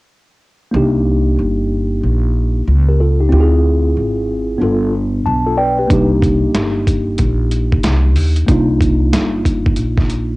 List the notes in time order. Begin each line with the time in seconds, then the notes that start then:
0.71 C2 A#3 D4 D#4
0.76 G4
1.39 G1
2.03 A#1
2.68 C#2
2.89 G4 A#4
3.00 F4 A4
3.20 D#4 G4
3.29 D2 C4 E4 F4
3.34 G4
3.40 G#4
3.97 G#1
4.58 G1 B3 D4 F4
4.63 A4
5.26 B1 A5
5.46 F4 A4
5.57 B4 D5 G5
5.78 G4 B4
5.87 C2 A#3 D4 D#4, kick, closed hi-hat
5.93 G4
6.22 kick, closed hi-hat
6.55 G1, snare, closed hi-hat
6.87 kick, closed hi-hat
7.18 A#1, kick, closed hi-hat
7.51 closed hi-hat
7.72 kick
7.83 C2, snare, closed hi-hat
8.16 D#2, open hi-hat
8.36 closed hi-hat
8.46 C2 A#3 D4 D#4, kick, closed hi-hat
8.51 F4
8.81 kick, closed hi-hat
9.13 G1, snare, closed hi-hat
9.45 kick, closed hi-hat
9.66 kick
9.76 A#1, closed hi-hat
9.98 kick, snare
10.10 closed hi-hat